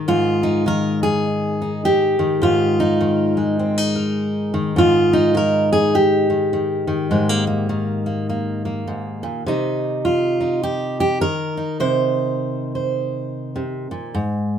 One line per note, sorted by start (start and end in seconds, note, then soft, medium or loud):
0.00 0.65 D#3 medium
0.08 2.39 G#2 medium
0.08 0.67 F4 loud
0.43 1.25 D#4 medium
0.66 2.18 D#3 medium
0.66 1.03 A#4 loud
1.03 2.43 G#4 loud
1.62 1.85 D#4 soft
1.85 2.79 G4 loud
2.19 2.99 D#3 medium
2.42 4.74 G#2 medium
2.42 3.37 F4 loud
2.80 3.59 D#4 medium
3.01 4.53 D#3 medium
3.37 4.77 G#3 soft
3.59 3.78 C4 soft
3.78 4.77 D#4 soft
3.96 4.78 A#4 soft
4.54 5.33 D#3 medium
4.76 7.08 G#2 medium
4.76 5.36 F4 loud
5.13 5.94 D#4 medium
5.34 6.29 D#3 medium
5.34 5.72 A#4 loud
5.73 5.95 G#4 medium
5.95 9.46 G4 loud
6.30 6.52 D#3 soft
6.53 6.86 D#3 soft
6.87 7.68 D#3 medium
7.11 8.86 G#2 medium
7.11 7.29 G#3 medium
7.29 7.46 A#3 soft
7.47 8.05 A#3 soft
7.69 11.20 D#3 medium
8.06 8.28 A#3 soft
8.30 8.64 A#3 soft
8.65 9.43 A#3 soft
8.87 9.23 G#2 medium
9.23 9.46 A#2 medium
9.46 11.22 C3 medium
9.46 10.39 D#4 medium
10.05 10.63 F4 medium
10.41 11.57 D#4 soft
10.63 10.99 G4 medium
11.00 11.21 G4 medium
11.21 14.15 D#3 medium
11.21 11.80 A#4 loud
11.57 14.59 D#4 medium
11.80 13.54 C3 medium
11.80 12.74 C5 loud
12.75 14.59 C5 soft
13.56 13.91 C3 medium
13.91 14.15 A#2 medium
14.15 14.59 G#2 medium